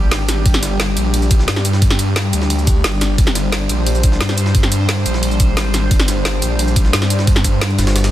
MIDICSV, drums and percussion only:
0, 0, Header, 1, 2, 480
1, 0, Start_track
1, 0, Tempo, 340909
1, 642, Time_signature, 4, 2, 24, 8
1, 11425, End_track
2, 0, Start_track
2, 0, Title_t, "Drums"
2, 161, Note_on_c, 9, 38, 120
2, 161, Note_on_c, 9, 51, 91
2, 162, Note_off_c, 9, 38, 0
2, 162, Note_on_c, 9, 38, 124
2, 162, Note_on_c, 9, 42, 80
2, 302, Note_off_c, 9, 51, 0
2, 303, Note_off_c, 9, 38, 0
2, 303, Note_off_c, 9, 42, 0
2, 402, Note_on_c, 9, 38, 45
2, 402, Note_on_c, 9, 40, 37
2, 402, Note_on_c, 9, 42, 94
2, 402, Note_on_c, 9, 51, 70
2, 402, Note_on_c, 9, 82, 58
2, 543, Note_off_c, 9, 38, 0
2, 543, Note_off_c, 9, 40, 0
2, 543, Note_off_c, 9, 42, 0
2, 543, Note_off_c, 9, 51, 0
2, 543, Note_off_c, 9, 82, 0
2, 642, Note_on_c, 9, 36, 126
2, 642, Note_on_c, 9, 42, 78
2, 642, Note_on_c, 9, 51, 91
2, 762, Note_on_c, 9, 40, 57
2, 762, Note_on_c, 9, 82, 26
2, 783, Note_off_c, 9, 36, 0
2, 783, Note_off_c, 9, 42, 0
2, 783, Note_off_c, 9, 51, 0
2, 882, Note_off_c, 9, 82, 0
2, 882, Note_on_c, 9, 38, 55
2, 882, Note_on_c, 9, 42, 89
2, 882, Note_on_c, 9, 51, 69
2, 882, Note_on_c, 9, 82, 55
2, 903, Note_off_c, 9, 40, 0
2, 1022, Note_off_c, 9, 38, 0
2, 1022, Note_off_c, 9, 51, 0
2, 1023, Note_off_c, 9, 42, 0
2, 1023, Note_off_c, 9, 82, 0
2, 1122, Note_on_c, 9, 38, 120
2, 1122, Note_on_c, 9, 42, 80
2, 1122, Note_on_c, 9, 51, 91
2, 1262, Note_off_c, 9, 42, 0
2, 1263, Note_off_c, 9, 38, 0
2, 1263, Note_off_c, 9, 51, 0
2, 1362, Note_on_c, 9, 42, 91
2, 1362, Note_on_c, 9, 51, 68
2, 1362, Note_on_c, 9, 82, 57
2, 1502, Note_off_c, 9, 42, 0
2, 1502, Note_off_c, 9, 82, 0
2, 1503, Note_off_c, 9, 51, 0
2, 1602, Note_on_c, 9, 42, 77
2, 1602, Note_on_c, 9, 51, 88
2, 1722, Note_on_c, 9, 82, 27
2, 1742, Note_off_c, 9, 42, 0
2, 1743, Note_off_c, 9, 51, 0
2, 1842, Note_off_c, 9, 82, 0
2, 1842, Note_on_c, 9, 36, 111
2, 1842, Note_on_c, 9, 42, 91
2, 1842, Note_on_c, 9, 51, 70
2, 1842, Note_on_c, 9, 82, 57
2, 1962, Note_on_c, 9, 38, 41
2, 1982, Note_off_c, 9, 42, 0
2, 1982, Note_off_c, 9, 51, 0
2, 1982, Note_off_c, 9, 82, 0
2, 1983, Note_off_c, 9, 36, 0
2, 2082, Note_off_c, 9, 38, 0
2, 2082, Note_on_c, 9, 38, 117
2, 2082, Note_on_c, 9, 42, 79
2, 2082, Note_on_c, 9, 51, 89
2, 2202, Note_off_c, 9, 38, 0
2, 2202, Note_on_c, 9, 38, 51
2, 2202, Note_on_c, 9, 40, 36
2, 2222, Note_off_c, 9, 42, 0
2, 2223, Note_off_c, 9, 51, 0
2, 2322, Note_on_c, 9, 42, 91
2, 2322, Note_on_c, 9, 51, 68
2, 2322, Note_on_c, 9, 82, 58
2, 2342, Note_off_c, 9, 40, 0
2, 2343, Note_off_c, 9, 38, 0
2, 2442, Note_on_c, 9, 38, 49
2, 2463, Note_off_c, 9, 42, 0
2, 2463, Note_off_c, 9, 51, 0
2, 2463, Note_off_c, 9, 82, 0
2, 2562, Note_on_c, 9, 36, 121
2, 2562, Note_on_c, 9, 42, 77
2, 2562, Note_on_c, 9, 51, 91
2, 2582, Note_off_c, 9, 38, 0
2, 2682, Note_on_c, 9, 40, 56
2, 2682, Note_on_c, 9, 82, 27
2, 2703, Note_off_c, 9, 36, 0
2, 2703, Note_off_c, 9, 42, 0
2, 2703, Note_off_c, 9, 51, 0
2, 2802, Note_off_c, 9, 82, 0
2, 2802, Note_on_c, 9, 42, 89
2, 2802, Note_on_c, 9, 51, 70
2, 2802, Note_on_c, 9, 82, 57
2, 2823, Note_off_c, 9, 40, 0
2, 2943, Note_off_c, 9, 42, 0
2, 2943, Note_off_c, 9, 51, 0
2, 2943, Note_off_c, 9, 82, 0
2, 3041, Note_on_c, 9, 38, 119
2, 3041, Note_on_c, 9, 42, 80
2, 3041, Note_on_c, 9, 51, 90
2, 3182, Note_off_c, 9, 38, 0
2, 3182, Note_off_c, 9, 42, 0
2, 3182, Note_off_c, 9, 51, 0
2, 3281, Note_on_c, 9, 51, 68
2, 3282, Note_on_c, 9, 42, 91
2, 3282, Note_on_c, 9, 82, 59
2, 3402, Note_on_c, 9, 38, 51
2, 3422, Note_off_c, 9, 51, 0
2, 3423, Note_off_c, 9, 42, 0
2, 3423, Note_off_c, 9, 82, 0
2, 3522, Note_on_c, 9, 42, 76
2, 3522, Note_on_c, 9, 51, 87
2, 3543, Note_off_c, 9, 38, 0
2, 3642, Note_on_c, 9, 82, 27
2, 3662, Note_off_c, 9, 51, 0
2, 3663, Note_off_c, 9, 42, 0
2, 3762, Note_off_c, 9, 82, 0
2, 3762, Note_on_c, 9, 36, 109
2, 3762, Note_on_c, 9, 42, 88
2, 3762, Note_on_c, 9, 51, 71
2, 3762, Note_on_c, 9, 82, 58
2, 3903, Note_off_c, 9, 36, 0
2, 3903, Note_off_c, 9, 42, 0
2, 3903, Note_off_c, 9, 51, 0
2, 3903, Note_off_c, 9, 82, 0
2, 4002, Note_on_c, 9, 38, 127
2, 4002, Note_on_c, 9, 42, 77
2, 4002, Note_on_c, 9, 51, 92
2, 4142, Note_off_c, 9, 51, 0
2, 4143, Note_off_c, 9, 38, 0
2, 4143, Note_off_c, 9, 42, 0
2, 4242, Note_on_c, 9, 38, 44
2, 4242, Note_on_c, 9, 40, 34
2, 4242, Note_on_c, 9, 42, 89
2, 4242, Note_on_c, 9, 51, 68
2, 4242, Note_on_c, 9, 82, 59
2, 4383, Note_off_c, 9, 38, 0
2, 4383, Note_off_c, 9, 40, 0
2, 4383, Note_off_c, 9, 42, 0
2, 4383, Note_off_c, 9, 51, 0
2, 4383, Note_off_c, 9, 82, 0
2, 4482, Note_on_c, 9, 36, 123
2, 4482, Note_on_c, 9, 42, 78
2, 4482, Note_on_c, 9, 51, 88
2, 4602, Note_on_c, 9, 40, 52
2, 4602, Note_on_c, 9, 82, 28
2, 4623, Note_off_c, 9, 36, 0
2, 4623, Note_off_c, 9, 42, 0
2, 4623, Note_off_c, 9, 51, 0
2, 4722, Note_off_c, 9, 82, 0
2, 4722, Note_on_c, 9, 38, 56
2, 4722, Note_on_c, 9, 42, 85
2, 4722, Note_on_c, 9, 51, 68
2, 4722, Note_on_c, 9, 82, 58
2, 4743, Note_off_c, 9, 40, 0
2, 4863, Note_off_c, 9, 38, 0
2, 4863, Note_off_c, 9, 42, 0
2, 4863, Note_off_c, 9, 51, 0
2, 4863, Note_off_c, 9, 82, 0
2, 4962, Note_on_c, 9, 38, 122
2, 4962, Note_on_c, 9, 42, 79
2, 4962, Note_on_c, 9, 51, 92
2, 5103, Note_off_c, 9, 38, 0
2, 5103, Note_off_c, 9, 42, 0
2, 5103, Note_off_c, 9, 51, 0
2, 5201, Note_on_c, 9, 51, 67
2, 5202, Note_on_c, 9, 42, 90
2, 5202, Note_on_c, 9, 82, 61
2, 5342, Note_off_c, 9, 51, 0
2, 5343, Note_off_c, 9, 42, 0
2, 5343, Note_off_c, 9, 82, 0
2, 5442, Note_on_c, 9, 42, 77
2, 5442, Note_on_c, 9, 51, 88
2, 5562, Note_on_c, 9, 82, 29
2, 5582, Note_off_c, 9, 51, 0
2, 5583, Note_off_c, 9, 42, 0
2, 5681, Note_off_c, 9, 82, 0
2, 5681, Note_on_c, 9, 42, 90
2, 5681, Note_on_c, 9, 51, 69
2, 5681, Note_on_c, 9, 82, 60
2, 5682, Note_on_c, 9, 36, 104
2, 5802, Note_on_c, 9, 38, 41
2, 5822, Note_off_c, 9, 42, 0
2, 5822, Note_off_c, 9, 51, 0
2, 5822, Note_off_c, 9, 82, 0
2, 5823, Note_off_c, 9, 36, 0
2, 5921, Note_off_c, 9, 38, 0
2, 5921, Note_on_c, 9, 38, 122
2, 5921, Note_on_c, 9, 42, 77
2, 5922, Note_off_c, 9, 38, 0
2, 5922, Note_on_c, 9, 38, 117
2, 5922, Note_on_c, 9, 51, 93
2, 6041, Note_off_c, 9, 38, 0
2, 6041, Note_on_c, 9, 38, 53
2, 6041, Note_on_c, 9, 40, 34
2, 6062, Note_off_c, 9, 42, 0
2, 6062, Note_off_c, 9, 51, 0
2, 6161, Note_on_c, 9, 42, 90
2, 6161, Note_on_c, 9, 51, 69
2, 6161, Note_on_c, 9, 82, 61
2, 6182, Note_off_c, 9, 38, 0
2, 6182, Note_off_c, 9, 40, 0
2, 6281, Note_on_c, 9, 38, 51
2, 6302, Note_off_c, 9, 42, 0
2, 6302, Note_off_c, 9, 51, 0
2, 6302, Note_off_c, 9, 82, 0
2, 6401, Note_on_c, 9, 51, 91
2, 6402, Note_on_c, 9, 36, 114
2, 6402, Note_on_c, 9, 42, 80
2, 6422, Note_off_c, 9, 38, 0
2, 6522, Note_on_c, 9, 40, 52
2, 6522, Note_on_c, 9, 82, 29
2, 6542, Note_off_c, 9, 51, 0
2, 6543, Note_off_c, 9, 36, 0
2, 6543, Note_off_c, 9, 42, 0
2, 6641, Note_on_c, 9, 51, 68
2, 6642, Note_off_c, 9, 82, 0
2, 6642, Note_on_c, 9, 42, 90
2, 6642, Note_on_c, 9, 82, 61
2, 6663, Note_off_c, 9, 40, 0
2, 6782, Note_off_c, 9, 42, 0
2, 6782, Note_off_c, 9, 51, 0
2, 6782, Note_off_c, 9, 82, 0
2, 6881, Note_on_c, 9, 38, 122
2, 6881, Note_on_c, 9, 42, 81
2, 6881, Note_on_c, 9, 51, 94
2, 7022, Note_off_c, 9, 38, 0
2, 7022, Note_off_c, 9, 42, 0
2, 7022, Note_off_c, 9, 51, 0
2, 7121, Note_on_c, 9, 51, 68
2, 7122, Note_on_c, 9, 42, 94
2, 7122, Note_on_c, 9, 82, 64
2, 7241, Note_on_c, 9, 38, 52
2, 7262, Note_off_c, 9, 42, 0
2, 7262, Note_off_c, 9, 51, 0
2, 7262, Note_off_c, 9, 82, 0
2, 7361, Note_on_c, 9, 42, 79
2, 7361, Note_on_c, 9, 51, 91
2, 7381, Note_off_c, 9, 38, 0
2, 7481, Note_on_c, 9, 82, 29
2, 7502, Note_off_c, 9, 42, 0
2, 7502, Note_off_c, 9, 51, 0
2, 7601, Note_off_c, 9, 82, 0
2, 7601, Note_on_c, 9, 42, 93
2, 7601, Note_on_c, 9, 51, 70
2, 7601, Note_on_c, 9, 82, 63
2, 7602, Note_on_c, 9, 36, 103
2, 7741, Note_off_c, 9, 51, 0
2, 7742, Note_off_c, 9, 36, 0
2, 7742, Note_off_c, 9, 42, 0
2, 7742, Note_off_c, 9, 82, 0
2, 7841, Note_on_c, 9, 38, 120
2, 7841, Note_on_c, 9, 51, 90
2, 7842, Note_off_c, 9, 38, 0
2, 7842, Note_on_c, 9, 38, 117
2, 7842, Note_on_c, 9, 42, 80
2, 7982, Note_off_c, 9, 38, 0
2, 7982, Note_off_c, 9, 42, 0
2, 7982, Note_off_c, 9, 51, 0
2, 8081, Note_on_c, 9, 38, 44
2, 8081, Note_on_c, 9, 40, 32
2, 8081, Note_on_c, 9, 42, 94
2, 8081, Note_on_c, 9, 51, 69
2, 8081, Note_on_c, 9, 82, 63
2, 8222, Note_off_c, 9, 38, 0
2, 8222, Note_off_c, 9, 40, 0
2, 8222, Note_off_c, 9, 42, 0
2, 8222, Note_off_c, 9, 51, 0
2, 8222, Note_off_c, 9, 82, 0
2, 8321, Note_on_c, 9, 36, 115
2, 8321, Note_on_c, 9, 51, 92
2, 8322, Note_on_c, 9, 42, 82
2, 8442, Note_on_c, 9, 40, 54
2, 8442, Note_on_c, 9, 82, 29
2, 8462, Note_off_c, 9, 36, 0
2, 8462, Note_off_c, 9, 51, 0
2, 8463, Note_off_c, 9, 42, 0
2, 8561, Note_on_c, 9, 38, 57
2, 8561, Note_on_c, 9, 51, 70
2, 8562, Note_off_c, 9, 82, 0
2, 8562, Note_on_c, 9, 42, 96
2, 8562, Note_on_c, 9, 82, 62
2, 8582, Note_off_c, 9, 40, 0
2, 8702, Note_off_c, 9, 38, 0
2, 8702, Note_off_c, 9, 51, 0
2, 8703, Note_off_c, 9, 42, 0
2, 8703, Note_off_c, 9, 82, 0
2, 8801, Note_on_c, 9, 38, 116
2, 8801, Note_on_c, 9, 42, 85
2, 8802, Note_off_c, 9, 38, 0
2, 8802, Note_on_c, 9, 38, 118
2, 8802, Note_on_c, 9, 51, 91
2, 8942, Note_off_c, 9, 38, 0
2, 8942, Note_off_c, 9, 42, 0
2, 8942, Note_off_c, 9, 51, 0
2, 9041, Note_on_c, 9, 51, 70
2, 9042, Note_on_c, 9, 42, 96
2, 9042, Note_on_c, 9, 82, 64
2, 9182, Note_off_c, 9, 51, 0
2, 9183, Note_off_c, 9, 42, 0
2, 9183, Note_off_c, 9, 82, 0
2, 9281, Note_on_c, 9, 42, 84
2, 9282, Note_on_c, 9, 51, 87
2, 9402, Note_on_c, 9, 82, 30
2, 9422, Note_off_c, 9, 42, 0
2, 9422, Note_off_c, 9, 51, 0
2, 9522, Note_off_c, 9, 82, 0
2, 9522, Note_on_c, 9, 36, 101
2, 9522, Note_on_c, 9, 42, 96
2, 9522, Note_on_c, 9, 51, 71
2, 9522, Note_on_c, 9, 82, 63
2, 9642, Note_on_c, 9, 38, 43
2, 9663, Note_off_c, 9, 36, 0
2, 9663, Note_off_c, 9, 42, 0
2, 9663, Note_off_c, 9, 51, 0
2, 9663, Note_off_c, 9, 82, 0
2, 9762, Note_off_c, 9, 38, 0
2, 9762, Note_on_c, 9, 38, 118
2, 9762, Note_on_c, 9, 42, 84
2, 9762, Note_on_c, 9, 51, 90
2, 9882, Note_off_c, 9, 38, 0
2, 9882, Note_on_c, 9, 38, 52
2, 9882, Note_on_c, 9, 40, 36
2, 9902, Note_off_c, 9, 42, 0
2, 9902, Note_off_c, 9, 51, 0
2, 10002, Note_on_c, 9, 42, 97
2, 10002, Note_on_c, 9, 51, 68
2, 10002, Note_on_c, 9, 82, 64
2, 10023, Note_off_c, 9, 38, 0
2, 10023, Note_off_c, 9, 40, 0
2, 10121, Note_on_c, 9, 38, 51
2, 10142, Note_off_c, 9, 51, 0
2, 10143, Note_off_c, 9, 42, 0
2, 10143, Note_off_c, 9, 82, 0
2, 10241, Note_on_c, 9, 51, 91
2, 10242, Note_on_c, 9, 36, 113
2, 10242, Note_on_c, 9, 42, 86
2, 10262, Note_off_c, 9, 38, 0
2, 10362, Note_on_c, 9, 40, 57
2, 10362, Note_on_c, 9, 82, 29
2, 10382, Note_off_c, 9, 51, 0
2, 10383, Note_off_c, 9, 36, 0
2, 10383, Note_off_c, 9, 42, 0
2, 10482, Note_off_c, 9, 82, 0
2, 10482, Note_on_c, 9, 36, 60
2, 10482, Note_on_c, 9, 42, 97
2, 10482, Note_on_c, 9, 51, 69
2, 10482, Note_on_c, 9, 82, 62
2, 10503, Note_off_c, 9, 40, 0
2, 10623, Note_off_c, 9, 36, 0
2, 10623, Note_off_c, 9, 42, 0
2, 10623, Note_off_c, 9, 51, 0
2, 10623, Note_off_c, 9, 82, 0
2, 10721, Note_on_c, 9, 38, 122
2, 10721, Note_on_c, 9, 42, 88
2, 10722, Note_off_c, 9, 38, 0
2, 10722, Note_on_c, 9, 38, 120
2, 10722, Note_on_c, 9, 51, 91
2, 10842, Note_on_c, 9, 82, 28
2, 10862, Note_off_c, 9, 42, 0
2, 10863, Note_off_c, 9, 38, 0
2, 10863, Note_off_c, 9, 51, 0
2, 10962, Note_off_c, 9, 82, 0
2, 10962, Note_on_c, 9, 38, 102
2, 10962, Note_on_c, 9, 42, 96
2, 10962, Note_on_c, 9, 51, 79
2, 10962, Note_on_c, 9, 82, 62
2, 11082, Note_off_c, 9, 38, 0
2, 11082, Note_off_c, 9, 51, 0
2, 11082, Note_on_c, 9, 38, 109
2, 11082, Note_on_c, 9, 51, 80
2, 11103, Note_off_c, 9, 42, 0
2, 11103, Note_off_c, 9, 82, 0
2, 11202, Note_off_c, 9, 38, 0
2, 11202, Note_off_c, 9, 51, 0
2, 11202, Note_on_c, 9, 38, 105
2, 11202, Note_on_c, 9, 51, 80
2, 11203, Note_on_c, 9, 42, 83
2, 11322, Note_off_c, 9, 38, 0
2, 11322, Note_off_c, 9, 51, 0
2, 11322, Note_on_c, 9, 38, 105
2, 11322, Note_on_c, 9, 51, 83
2, 11322, Note_on_c, 9, 82, 29
2, 11343, Note_off_c, 9, 42, 0
2, 11425, Note_off_c, 9, 38, 0
2, 11425, Note_off_c, 9, 51, 0
2, 11425, Note_off_c, 9, 82, 0
2, 11425, End_track
0, 0, End_of_file